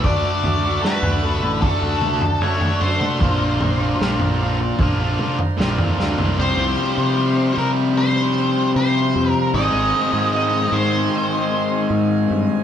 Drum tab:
SD |----o-----------|----o-------o-o-|----------------|----------------|
T2 |----------o----o|--o-------o-----|----------------|----------------|
FT |o-o--o--o--o-o--|o-o--o--o--o-o-o|----------------|----------------|
BD |o-------o-------|o-------o-------|----------------|----------------|